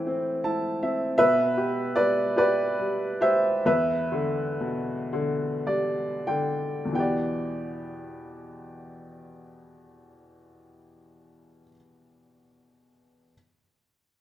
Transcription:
0, 0, Header, 1, 2, 480
1, 0, Start_track
1, 0, Key_signature, 1, "minor"
1, 0, Tempo, 760456
1, 754, Time_signature, 6, 3, 24, 8
1, 1242, Tempo, 823045
1, 1722, Tempo, 869565
1, 2202, Tempo, 946372
1, 2682, Tempo, 1073345
1, 3162, Tempo, 1255230
1, 3642, Tempo, 1330377
1, 4122, Tempo, 1279318
1, 5082, Tempo, 1304348
1, 6326, End_track
2, 0, Start_track
2, 0, Title_t, "Upright piano"
2, 0, Program_c, 0, 0
2, 0, Control_c, 0, 64, 127
2, 0, Note_on_c, 0, 45, 54
2, 0, Note_on_c, 0, 52, 45
2, 0, Note_on_c, 0, 60, 48
2, 0, Note_on_c, 0, 76, 53
2, 0, Note_on_c, 0, 79, 69
2, 42, Note_off_c, 0, 60, 0
2, 42, Note_on_c, 0, 60, 51
2, 238, Note_off_c, 0, 79, 0
2, 253, Note_off_c, 0, 76, 0
2, 279, Note_on_c, 0, 64, 53
2, 279, Note_on_c, 0, 81, 63
2, 500, Note_off_c, 0, 81, 0
2, 513, Note_off_c, 0, 60, 0
2, 522, Note_on_c, 0, 76, 60
2, 523, Note_on_c, 0, 60, 47
2, 726, Note_off_c, 0, 45, 0
2, 729, Note_off_c, 0, 52, 0
2, 734, Note_off_c, 0, 76, 0
2, 739, Note_off_c, 0, 64, 0
2, 743, Note_on_c, 0, 76, 100
2, 748, Note_on_c, 0, 71, 77
2, 749, Note_off_c, 0, 60, 0
2, 760, Note_on_c, 0, 47, 61
2, 763, Control_c, 0, 64, 0
2, 854, Control_c, 0, 64, 127
2, 993, Note_on_c, 0, 67, 56
2, 1214, Note_off_c, 0, 71, 0
2, 1235, Note_on_c, 0, 74, 83
2, 1240, Note_on_c, 0, 55, 47
2, 1240, Note_on_c, 0, 71, 65
2, 1251, Note_off_c, 0, 76, 0
2, 1461, Note_off_c, 0, 71, 0
2, 1464, Note_off_c, 0, 67, 0
2, 1473, Note_on_c, 0, 67, 55
2, 1474, Note_off_c, 0, 74, 0
2, 1481, Note_on_c, 0, 71, 71
2, 1483, Note_on_c, 0, 74, 77
2, 1714, Note_off_c, 0, 55, 0
2, 1723, Note_on_c, 0, 55, 55
2, 1938, Note_off_c, 0, 71, 0
2, 1948, Note_off_c, 0, 67, 0
2, 1953, Note_on_c, 0, 72, 69
2, 1956, Note_on_c, 0, 67, 49
2, 1958, Note_on_c, 0, 76, 89
2, 1975, Note_off_c, 0, 74, 0
2, 2182, Note_off_c, 0, 72, 0
2, 2183, Note_off_c, 0, 47, 0
2, 2188, Note_off_c, 0, 55, 0
2, 2194, Note_off_c, 0, 67, 0
2, 2196, Note_off_c, 0, 76, 0
2, 2199, Note_on_c, 0, 40, 64
2, 2202, Note_on_c, 0, 71, 70
2, 2204, Note_on_c, 0, 76, 84
2, 2209, Control_c, 0, 64, 0
2, 2311, Control_c, 0, 64, 127
2, 2435, Note_on_c, 0, 50, 55
2, 2681, Note_on_c, 0, 47, 53
2, 2908, Note_off_c, 0, 50, 0
2, 2915, Note_on_c, 0, 50, 55
2, 3156, Note_on_c, 0, 55, 55
2, 3156, Note_on_c, 0, 74, 64
2, 3374, Note_off_c, 0, 74, 0
2, 3377, Note_off_c, 0, 71, 0
2, 3378, Note_off_c, 0, 76, 0
2, 3384, Note_off_c, 0, 50, 0
2, 3388, Note_on_c, 0, 79, 64
2, 3390, Note_on_c, 0, 50, 50
2, 3603, Note_off_c, 0, 40, 0
2, 3609, Note_on_c, 0, 40, 41
2, 3616, Note_off_c, 0, 47, 0
2, 3622, Note_on_c, 0, 47, 39
2, 3625, Note_off_c, 0, 55, 0
2, 3625, Note_off_c, 0, 79, 0
2, 3631, Note_on_c, 0, 52, 41
2, 3634, Note_off_c, 0, 50, 0
2, 3644, Note_on_c, 0, 59, 42
2, 3648, Control_c, 0, 64, 0
2, 3648, Note_on_c, 0, 79, 62
2, 3657, Note_on_c, 0, 67, 39
2, 3665, Note_on_c, 0, 74, 46
2, 3717, Control_c, 0, 64, 127
2, 5370, Note_off_c, 0, 40, 0
2, 5382, Note_off_c, 0, 47, 0
2, 5392, Note_off_c, 0, 52, 0
2, 5404, Note_off_c, 0, 59, 0
2, 5408, Note_off_c, 0, 79, 0
2, 5417, Note_off_c, 0, 67, 0
2, 5426, Note_off_c, 0, 74, 0
2, 6007, Control_c, 0, 64, 0
2, 6326, End_track
0, 0, End_of_file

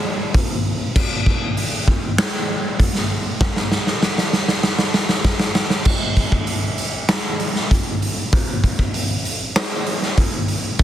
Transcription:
0, 0, Header, 1, 2, 480
1, 0, Start_track
1, 0, Tempo, 614754
1, 746, Time_signature, 4, 2, 24, 8
1, 8457, End_track
2, 0, Start_track
2, 0, Title_t, "Drums"
2, 268, Note_on_c, 9, 46, 61
2, 269, Note_on_c, 9, 36, 101
2, 346, Note_off_c, 9, 46, 0
2, 347, Note_off_c, 9, 36, 0
2, 748, Note_on_c, 9, 36, 127
2, 748, Note_on_c, 9, 49, 108
2, 826, Note_off_c, 9, 36, 0
2, 827, Note_off_c, 9, 49, 0
2, 987, Note_on_c, 9, 36, 82
2, 1065, Note_off_c, 9, 36, 0
2, 1227, Note_on_c, 9, 46, 57
2, 1305, Note_off_c, 9, 46, 0
2, 1465, Note_on_c, 9, 36, 83
2, 1543, Note_off_c, 9, 36, 0
2, 1705, Note_on_c, 9, 38, 120
2, 1705, Note_on_c, 9, 46, 53
2, 1783, Note_off_c, 9, 38, 0
2, 1783, Note_off_c, 9, 46, 0
2, 2183, Note_on_c, 9, 36, 88
2, 2184, Note_on_c, 9, 46, 65
2, 2261, Note_off_c, 9, 36, 0
2, 2262, Note_off_c, 9, 46, 0
2, 2303, Note_on_c, 9, 38, 36
2, 2381, Note_off_c, 9, 38, 0
2, 2660, Note_on_c, 9, 36, 125
2, 2660, Note_on_c, 9, 38, 73
2, 2738, Note_off_c, 9, 38, 0
2, 2739, Note_off_c, 9, 36, 0
2, 2782, Note_on_c, 9, 38, 56
2, 2860, Note_off_c, 9, 38, 0
2, 2901, Note_on_c, 9, 38, 63
2, 2979, Note_off_c, 9, 38, 0
2, 3022, Note_on_c, 9, 38, 54
2, 3100, Note_off_c, 9, 38, 0
2, 3142, Note_on_c, 9, 38, 80
2, 3221, Note_off_c, 9, 38, 0
2, 3264, Note_on_c, 9, 38, 71
2, 3342, Note_off_c, 9, 38, 0
2, 3382, Note_on_c, 9, 38, 73
2, 3461, Note_off_c, 9, 38, 0
2, 3500, Note_on_c, 9, 38, 74
2, 3579, Note_off_c, 9, 38, 0
2, 3618, Note_on_c, 9, 38, 93
2, 3696, Note_off_c, 9, 38, 0
2, 3736, Note_on_c, 9, 38, 81
2, 3814, Note_off_c, 9, 38, 0
2, 3858, Note_on_c, 9, 38, 90
2, 3936, Note_off_c, 9, 38, 0
2, 3975, Note_on_c, 9, 38, 82
2, 4053, Note_off_c, 9, 38, 0
2, 4095, Note_on_c, 9, 38, 98
2, 4096, Note_on_c, 9, 36, 87
2, 4173, Note_off_c, 9, 38, 0
2, 4174, Note_off_c, 9, 36, 0
2, 4212, Note_on_c, 9, 38, 96
2, 4290, Note_off_c, 9, 38, 0
2, 4334, Note_on_c, 9, 38, 111
2, 4412, Note_off_c, 9, 38, 0
2, 4452, Note_on_c, 9, 38, 81
2, 4530, Note_off_c, 9, 38, 0
2, 4568, Note_on_c, 9, 57, 107
2, 4574, Note_on_c, 9, 36, 115
2, 4647, Note_off_c, 9, 57, 0
2, 4652, Note_off_c, 9, 36, 0
2, 4812, Note_on_c, 9, 46, 47
2, 4815, Note_on_c, 9, 36, 72
2, 4890, Note_off_c, 9, 46, 0
2, 4893, Note_off_c, 9, 36, 0
2, 4935, Note_on_c, 9, 36, 77
2, 5013, Note_off_c, 9, 36, 0
2, 5050, Note_on_c, 9, 46, 61
2, 5128, Note_off_c, 9, 46, 0
2, 5292, Note_on_c, 9, 46, 54
2, 5370, Note_off_c, 9, 46, 0
2, 5533, Note_on_c, 9, 46, 66
2, 5534, Note_on_c, 9, 38, 103
2, 5611, Note_off_c, 9, 46, 0
2, 5612, Note_off_c, 9, 38, 0
2, 5774, Note_on_c, 9, 46, 54
2, 5852, Note_off_c, 9, 46, 0
2, 5898, Note_on_c, 9, 38, 31
2, 5976, Note_off_c, 9, 38, 0
2, 6021, Note_on_c, 9, 36, 86
2, 6021, Note_on_c, 9, 46, 69
2, 6099, Note_off_c, 9, 36, 0
2, 6099, Note_off_c, 9, 46, 0
2, 6264, Note_on_c, 9, 46, 56
2, 6342, Note_off_c, 9, 46, 0
2, 6503, Note_on_c, 9, 36, 115
2, 6504, Note_on_c, 9, 46, 83
2, 6581, Note_off_c, 9, 36, 0
2, 6582, Note_off_c, 9, 46, 0
2, 6744, Note_on_c, 9, 36, 77
2, 6745, Note_on_c, 9, 46, 50
2, 6822, Note_off_c, 9, 36, 0
2, 6823, Note_off_c, 9, 46, 0
2, 6863, Note_on_c, 9, 36, 77
2, 6941, Note_off_c, 9, 36, 0
2, 6981, Note_on_c, 9, 46, 74
2, 7059, Note_off_c, 9, 46, 0
2, 7223, Note_on_c, 9, 46, 59
2, 7301, Note_off_c, 9, 46, 0
2, 7463, Note_on_c, 9, 46, 70
2, 7464, Note_on_c, 9, 38, 114
2, 7541, Note_off_c, 9, 46, 0
2, 7542, Note_off_c, 9, 38, 0
2, 7701, Note_on_c, 9, 46, 59
2, 7779, Note_off_c, 9, 46, 0
2, 7826, Note_on_c, 9, 38, 33
2, 7904, Note_off_c, 9, 38, 0
2, 7943, Note_on_c, 9, 46, 68
2, 7946, Note_on_c, 9, 36, 85
2, 8021, Note_off_c, 9, 46, 0
2, 8024, Note_off_c, 9, 36, 0
2, 8184, Note_on_c, 9, 46, 53
2, 8262, Note_off_c, 9, 46, 0
2, 8424, Note_on_c, 9, 46, 74
2, 8428, Note_on_c, 9, 36, 120
2, 8457, Note_off_c, 9, 36, 0
2, 8457, Note_off_c, 9, 46, 0
2, 8457, End_track
0, 0, End_of_file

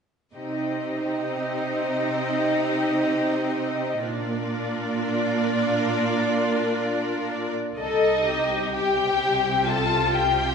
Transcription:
0, 0, Header, 1, 6, 480
1, 0, Start_track
1, 0, Tempo, 500000
1, 10126, End_track
2, 0, Start_track
2, 0, Title_t, "Violin section"
2, 0, Program_c, 0, 48
2, 7465, Note_on_c, 0, 75, 51
2, 8350, Note_off_c, 0, 75, 0
2, 8396, Note_on_c, 0, 79, 53
2, 9290, Note_off_c, 0, 79, 0
2, 9292, Note_on_c, 0, 81, 59
2, 9735, Note_on_c, 0, 79, 69
2, 9736, Note_off_c, 0, 81, 0
2, 10126, Note_off_c, 0, 79, 0
2, 10126, End_track
3, 0, Start_track
3, 0, Title_t, "Violin section"
3, 0, Program_c, 1, 48
3, 333, Note_on_c, 1, 75, 39
3, 334, Note_on_c, 1, 67, 37
3, 3821, Note_off_c, 1, 75, 0
3, 3822, Note_off_c, 1, 67, 0
3, 3866, Note_on_c, 1, 70, 45
3, 3867, Note_on_c, 1, 74, 50
3, 7239, Note_off_c, 1, 70, 0
3, 7240, Note_off_c, 1, 74, 0
3, 7477, Note_on_c, 1, 63, 47
3, 8356, Note_off_c, 1, 63, 0
3, 8393, Note_on_c, 1, 67, 49
3, 9288, Note_off_c, 1, 67, 0
3, 9292, Note_on_c, 1, 69, 53
3, 9734, Note_on_c, 1, 67, 48
3, 9736, Note_off_c, 1, 69, 0
3, 10126, Note_off_c, 1, 67, 0
3, 10126, End_track
4, 0, Start_track
4, 0, Title_t, "Viola section"
4, 0, Program_c, 2, 48
4, 333, Note_on_c, 2, 60, 38
4, 335, Note_on_c, 2, 63, 39
4, 3821, Note_off_c, 2, 60, 0
4, 3822, Note_off_c, 2, 63, 0
4, 3861, Note_on_c, 2, 62, 49
4, 3862, Note_on_c, 2, 65, 47
4, 7237, Note_off_c, 2, 62, 0
4, 7237, Note_off_c, 2, 65, 0
4, 7471, Note_on_c, 2, 69, 50
4, 7902, Note_off_c, 2, 69, 0
4, 7937, Note_on_c, 2, 67, 39
4, 9285, Note_on_c, 2, 65, 44
4, 9289, Note_off_c, 2, 67, 0
4, 10126, Note_off_c, 2, 65, 0
4, 10126, End_track
5, 0, Start_track
5, 0, Title_t, "Cello section"
5, 0, Program_c, 3, 48
5, 328, Note_on_c, 3, 48, 30
5, 3819, Note_off_c, 3, 48, 0
5, 3862, Note_on_c, 3, 46, 39
5, 7275, Note_off_c, 3, 46, 0
5, 7478, Note_on_c, 3, 48, 34
5, 10126, Note_off_c, 3, 48, 0
5, 10126, End_track
6, 0, Start_track
6, 0, Title_t, "Double bass section"
6, 0, Program_c, 4, 48
6, 7468, Note_on_c, 4, 36, 43
6, 10126, Note_off_c, 4, 36, 0
6, 10126, End_track
0, 0, End_of_file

